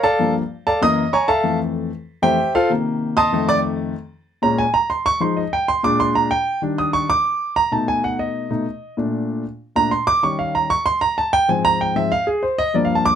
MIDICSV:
0, 0, Header, 1, 2, 480
1, 0, Start_track
1, 0, Tempo, 313808
1, 289, Time_signature, 4, 2, 24, 8
1, 20117, End_track
2, 0, Start_track
2, 0, Title_t, "Grand piano"
2, 0, Program_c, 0, 0
2, 53, Note_on_c, 0, 81, 113
2, 57, Note_on_c, 0, 74, 87
2, 58, Note_on_c, 0, 69, 89
2, 61, Note_on_c, 0, 77, 86
2, 289, Note_on_c, 0, 43, 52
2, 300, Note_on_c, 0, 53, 44
2, 307, Note_on_c, 0, 58, 58
2, 498, Note_off_c, 0, 81, 0
2, 500, Note_off_c, 0, 69, 0
2, 500, Note_off_c, 0, 74, 0
2, 502, Note_off_c, 0, 77, 0
2, 609, Note_off_c, 0, 43, 0
2, 614, Note_off_c, 0, 53, 0
2, 618, Note_off_c, 0, 58, 0
2, 1020, Note_on_c, 0, 81, 102
2, 1025, Note_on_c, 0, 77, 73
2, 1026, Note_on_c, 0, 69, 73
2, 1027, Note_on_c, 0, 74, 77
2, 1246, Note_on_c, 0, 42, 73
2, 1248, Note_off_c, 0, 81, 0
2, 1250, Note_off_c, 0, 77, 0
2, 1251, Note_off_c, 0, 69, 0
2, 1251, Note_off_c, 0, 74, 0
2, 1254, Note_on_c, 0, 52, 62
2, 1262, Note_on_c, 0, 58, 76
2, 1262, Note_on_c, 0, 87, 127
2, 1265, Note_on_c, 0, 75, 101
2, 1567, Note_off_c, 0, 42, 0
2, 1571, Note_off_c, 0, 52, 0
2, 1575, Note_off_c, 0, 58, 0
2, 1703, Note_off_c, 0, 87, 0
2, 1704, Note_off_c, 0, 75, 0
2, 1729, Note_on_c, 0, 85, 99
2, 1733, Note_on_c, 0, 73, 80
2, 1735, Note_on_c, 0, 82, 87
2, 1740, Note_on_c, 0, 80, 86
2, 1959, Note_on_c, 0, 81, 110
2, 1962, Note_off_c, 0, 85, 0
2, 1964, Note_off_c, 0, 73, 0
2, 1965, Note_off_c, 0, 82, 0
2, 1968, Note_off_c, 0, 80, 0
2, 1968, Note_on_c, 0, 69, 87
2, 1969, Note_on_c, 0, 76, 85
2, 1970, Note_on_c, 0, 77, 90
2, 2194, Note_on_c, 0, 41, 58
2, 2207, Note_on_c, 0, 52, 55
2, 2217, Note_on_c, 0, 57, 58
2, 2410, Note_off_c, 0, 81, 0
2, 2415, Note_off_c, 0, 69, 0
2, 2416, Note_off_c, 0, 76, 0
2, 2416, Note_off_c, 0, 77, 0
2, 2885, Note_off_c, 0, 41, 0
2, 2892, Note_off_c, 0, 52, 0
2, 2898, Note_off_c, 0, 57, 0
2, 3400, Note_on_c, 0, 41, 55
2, 3401, Note_on_c, 0, 52, 50
2, 3407, Note_on_c, 0, 79, 112
2, 3410, Note_on_c, 0, 57, 64
2, 3410, Note_on_c, 0, 72, 80
2, 3411, Note_on_c, 0, 67, 85
2, 3413, Note_on_c, 0, 76, 84
2, 3620, Note_off_c, 0, 41, 0
2, 3621, Note_off_c, 0, 52, 0
2, 3626, Note_off_c, 0, 57, 0
2, 3854, Note_off_c, 0, 79, 0
2, 3856, Note_off_c, 0, 67, 0
2, 3856, Note_off_c, 0, 72, 0
2, 3857, Note_off_c, 0, 76, 0
2, 3899, Note_on_c, 0, 77, 109
2, 3901, Note_on_c, 0, 69, 90
2, 3903, Note_on_c, 0, 65, 94
2, 3903, Note_on_c, 0, 72, 86
2, 4122, Note_on_c, 0, 48, 53
2, 4127, Note_off_c, 0, 77, 0
2, 4128, Note_off_c, 0, 69, 0
2, 4129, Note_off_c, 0, 65, 0
2, 4129, Note_off_c, 0, 72, 0
2, 4134, Note_on_c, 0, 51, 45
2, 4144, Note_on_c, 0, 58, 62
2, 4843, Note_on_c, 0, 87, 122
2, 4856, Note_on_c, 0, 81, 110
2, 4856, Note_on_c, 0, 84, 95
2, 4857, Note_on_c, 0, 75, 95
2, 5037, Note_off_c, 0, 48, 0
2, 5043, Note_off_c, 0, 51, 0
2, 5049, Note_off_c, 0, 58, 0
2, 5081, Note_on_c, 0, 41, 64
2, 5089, Note_on_c, 0, 51, 62
2, 5099, Note_on_c, 0, 57, 73
2, 5292, Note_off_c, 0, 87, 0
2, 5299, Note_off_c, 0, 75, 0
2, 5299, Note_off_c, 0, 81, 0
2, 5299, Note_off_c, 0, 84, 0
2, 5332, Note_on_c, 0, 86, 127
2, 5337, Note_on_c, 0, 74, 106
2, 5475, Note_off_c, 0, 86, 0
2, 5478, Note_off_c, 0, 74, 0
2, 5996, Note_off_c, 0, 41, 0
2, 6000, Note_off_c, 0, 51, 0
2, 6006, Note_off_c, 0, 57, 0
2, 6761, Note_on_c, 0, 46, 57
2, 6769, Note_on_c, 0, 56, 53
2, 6771, Note_on_c, 0, 82, 92
2, 6782, Note_on_c, 0, 61, 63
2, 7003, Note_off_c, 0, 82, 0
2, 7012, Note_on_c, 0, 80, 106
2, 7084, Note_off_c, 0, 46, 0
2, 7088, Note_off_c, 0, 56, 0
2, 7095, Note_off_c, 0, 61, 0
2, 7243, Note_off_c, 0, 80, 0
2, 7247, Note_on_c, 0, 82, 98
2, 7480, Note_off_c, 0, 82, 0
2, 7492, Note_on_c, 0, 84, 91
2, 7723, Note_off_c, 0, 84, 0
2, 7736, Note_on_c, 0, 85, 124
2, 7960, Note_on_c, 0, 53, 54
2, 7965, Note_off_c, 0, 85, 0
2, 7966, Note_on_c, 0, 56, 47
2, 7973, Note_on_c, 0, 84, 76
2, 7977, Note_on_c, 0, 63, 61
2, 8204, Note_off_c, 0, 84, 0
2, 8208, Note_on_c, 0, 75, 68
2, 8283, Note_off_c, 0, 53, 0
2, 8286, Note_off_c, 0, 56, 0
2, 8292, Note_off_c, 0, 63, 0
2, 8441, Note_off_c, 0, 75, 0
2, 8458, Note_on_c, 0, 79, 95
2, 8687, Note_off_c, 0, 79, 0
2, 8694, Note_on_c, 0, 84, 108
2, 8924, Note_off_c, 0, 84, 0
2, 8924, Note_on_c, 0, 46, 65
2, 8930, Note_on_c, 0, 56, 55
2, 8937, Note_on_c, 0, 86, 114
2, 8947, Note_on_c, 0, 62, 72
2, 9166, Note_off_c, 0, 86, 0
2, 9175, Note_on_c, 0, 84, 107
2, 9405, Note_off_c, 0, 84, 0
2, 9413, Note_on_c, 0, 82, 88
2, 9610, Note_off_c, 0, 46, 0
2, 9614, Note_off_c, 0, 56, 0
2, 9623, Note_off_c, 0, 62, 0
2, 9644, Note_off_c, 0, 82, 0
2, 9647, Note_on_c, 0, 79, 108
2, 10095, Note_off_c, 0, 79, 0
2, 10122, Note_on_c, 0, 51, 53
2, 10132, Note_on_c, 0, 55, 54
2, 10139, Note_on_c, 0, 62, 62
2, 10376, Note_on_c, 0, 87, 95
2, 10605, Note_off_c, 0, 87, 0
2, 10605, Note_on_c, 0, 85, 105
2, 10809, Note_off_c, 0, 51, 0
2, 10814, Note_off_c, 0, 55, 0
2, 10818, Note_off_c, 0, 62, 0
2, 10840, Note_off_c, 0, 85, 0
2, 10853, Note_on_c, 0, 86, 127
2, 11521, Note_off_c, 0, 86, 0
2, 11568, Note_on_c, 0, 82, 105
2, 11801, Note_off_c, 0, 82, 0
2, 11801, Note_on_c, 0, 47, 52
2, 11811, Note_on_c, 0, 57, 50
2, 11813, Note_on_c, 0, 81, 74
2, 11816, Note_on_c, 0, 63, 57
2, 12044, Note_off_c, 0, 81, 0
2, 12056, Note_on_c, 0, 80, 97
2, 12285, Note_off_c, 0, 80, 0
2, 12299, Note_on_c, 0, 78, 90
2, 12527, Note_off_c, 0, 78, 0
2, 12533, Note_on_c, 0, 75, 82
2, 12980, Note_off_c, 0, 47, 0
2, 12987, Note_off_c, 0, 57, 0
2, 12988, Note_off_c, 0, 63, 0
2, 13003, Note_on_c, 0, 47, 51
2, 13010, Note_on_c, 0, 57, 47
2, 13011, Note_on_c, 0, 63, 58
2, 13221, Note_off_c, 0, 47, 0
2, 13225, Note_off_c, 0, 57, 0
2, 13226, Note_off_c, 0, 63, 0
2, 13669, Note_off_c, 0, 75, 0
2, 13724, Note_on_c, 0, 46, 50
2, 13733, Note_on_c, 0, 57, 45
2, 13738, Note_on_c, 0, 62, 50
2, 14410, Note_off_c, 0, 46, 0
2, 14415, Note_off_c, 0, 57, 0
2, 14417, Note_off_c, 0, 62, 0
2, 14923, Note_on_c, 0, 46, 51
2, 14931, Note_on_c, 0, 57, 50
2, 14932, Note_on_c, 0, 82, 108
2, 14936, Note_on_c, 0, 62, 62
2, 15141, Note_off_c, 0, 46, 0
2, 15146, Note_off_c, 0, 57, 0
2, 15149, Note_off_c, 0, 62, 0
2, 15163, Note_off_c, 0, 82, 0
2, 15164, Note_on_c, 0, 84, 92
2, 15399, Note_off_c, 0, 84, 0
2, 15404, Note_on_c, 0, 86, 127
2, 15639, Note_off_c, 0, 86, 0
2, 15643, Note_on_c, 0, 51, 49
2, 15653, Note_on_c, 0, 85, 88
2, 15654, Note_on_c, 0, 55, 49
2, 15660, Note_on_c, 0, 61, 52
2, 15883, Note_off_c, 0, 85, 0
2, 15889, Note_on_c, 0, 77, 81
2, 16122, Note_off_c, 0, 77, 0
2, 16136, Note_on_c, 0, 82, 92
2, 16330, Note_off_c, 0, 51, 0
2, 16335, Note_off_c, 0, 55, 0
2, 16338, Note_off_c, 0, 61, 0
2, 16365, Note_off_c, 0, 82, 0
2, 16368, Note_on_c, 0, 85, 116
2, 16601, Note_off_c, 0, 85, 0
2, 16605, Note_on_c, 0, 84, 118
2, 16840, Note_off_c, 0, 84, 0
2, 16845, Note_on_c, 0, 82, 107
2, 17080, Note_off_c, 0, 82, 0
2, 17098, Note_on_c, 0, 81, 100
2, 17327, Note_off_c, 0, 81, 0
2, 17331, Note_on_c, 0, 79, 124
2, 17563, Note_off_c, 0, 79, 0
2, 17567, Note_on_c, 0, 44, 49
2, 17573, Note_on_c, 0, 53, 50
2, 17578, Note_on_c, 0, 80, 87
2, 17583, Note_on_c, 0, 60, 54
2, 17807, Note_off_c, 0, 80, 0
2, 17815, Note_on_c, 0, 82, 127
2, 18045, Note_off_c, 0, 82, 0
2, 18064, Note_on_c, 0, 79, 98
2, 18266, Note_off_c, 0, 44, 0
2, 18268, Note_off_c, 0, 53, 0
2, 18276, Note_off_c, 0, 60, 0
2, 18288, Note_on_c, 0, 44, 49
2, 18290, Note_off_c, 0, 79, 0
2, 18291, Note_on_c, 0, 53, 47
2, 18296, Note_on_c, 0, 76, 97
2, 18299, Note_on_c, 0, 60, 61
2, 18505, Note_off_c, 0, 44, 0
2, 18506, Note_off_c, 0, 53, 0
2, 18511, Note_off_c, 0, 60, 0
2, 18526, Note_off_c, 0, 76, 0
2, 18533, Note_on_c, 0, 77, 114
2, 18764, Note_off_c, 0, 77, 0
2, 18767, Note_on_c, 0, 68, 85
2, 19001, Note_off_c, 0, 68, 0
2, 19006, Note_on_c, 0, 72, 82
2, 19241, Note_off_c, 0, 72, 0
2, 19250, Note_on_c, 0, 75, 113
2, 19483, Note_off_c, 0, 75, 0
2, 19484, Note_on_c, 0, 43, 53
2, 19496, Note_on_c, 0, 53, 51
2, 19496, Note_on_c, 0, 74, 78
2, 19501, Note_on_c, 0, 58, 59
2, 19649, Note_off_c, 0, 74, 0
2, 19650, Note_on_c, 0, 77, 88
2, 19806, Note_off_c, 0, 77, 0
2, 19814, Note_on_c, 0, 81, 89
2, 19967, Note_off_c, 0, 81, 0
2, 19969, Note_on_c, 0, 86, 126
2, 20117, Note_off_c, 0, 43, 0
2, 20117, Note_off_c, 0, 53, 0
2, 20117, Note_off_c, 0, 58, 0
2, 20117, Note_off_c, 0, 86, 0
2, 20117, End_track
0, 0, End_of_file